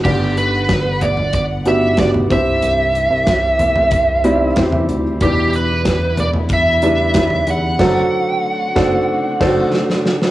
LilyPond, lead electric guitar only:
\new Staff \with { instrumentName = "Lead electric guitar" } { \time 4/4 \key g \major \tempo 4 = 93 g'8 b'4 d''8 d''8 e''8 d''8 e''8~ | e''2.~ e''8 r8 | g'8 b'4 d''8 e''4. fis''8~ | fis''2. r4 | }